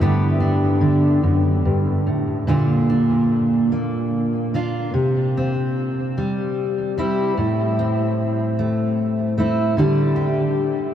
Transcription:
0.00 G2 D3 B3 D4 G4
0.40 D4
0.81 D3
1.23 F#2
1.65 G2
2.07 A2
2.47 A#2 D3 A#3 D4 F4
2.89 D4
3.72 A#3
4.54 A#3 D4 F4
4.94 C3
5.37 C4
6.18 G3
6.98 G3 C4 E4
7.37 A2
7.79 C4
8.59 A3
9.38 A3 C4 E4
9.77 D3 G3 D4 G4
10.16 G4

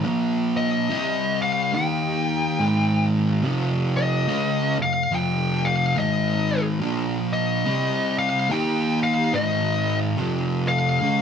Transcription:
0.04 A#2 F3 A#3
0.57 D#5
0.90 C3 G3 C4
1.42 F5
1.75 D#3 A#3 D#4 G5
2.60 G#2 D#3 G#3
3.44 F2 C3 F3
3.97 D#5
4.27 C#3 G#3 C#4
4.79 F2 C3 F5
5.11 F2 C3 F3 G5
5.65 F5
5.96 G#2 D#3 G#3 D#5
6.81 A#2 F3 A#3
7.33 D#5
7.66 C3 G3 C4
8.19 F5
8.50 D#3 A#3 D#4 G5
9.03 F5
9.33 G#2 D#3 G#3 D#5
10.17 F2 C3 F3
10.68 F5
11.01 C#3 G#3 C#4

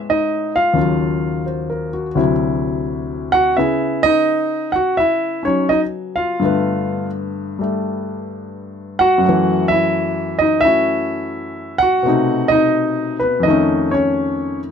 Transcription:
Already playing: A2 G#3 B3 C#4
0.10 D#4 D#5
0.56 F4 F5
0.74 D#2 C#3 F#3
0.78 F4
1.46 C5
1.70 A#4
1.93 F#4
2.15 D2 C3 F#3 E4
3.32 F#4 F#5
3.57 C#3 B3 E4 G#4 E5
4.03 D#4 D#5
4.72 F#4 F#5
4.97 E4 E5
5.43 F#3 C#4 D#4 C#5
5.47 C#4
5.69 D#4 D#5
6.16 F4 F5
6.40 G2 D3 A3
6.45 B3
7.59 G3 A3
8.99 F#4 F#5
9.18 F#2 F#3
9.25 E3 A3
9.68 E4 E5
10.39 D#4 D#5
10.61 A3 E5
10.65 C#4 E4 F#4
11.78 F#5
11.83 F#4
12.03 B2 C3 A3
12.08 D#4
12.48 D#4 D#5
13.20 B3 B4
13.40 F2 D#3 D#5
13.47 A3 C#4 D#4
13.91 C#4 C#5

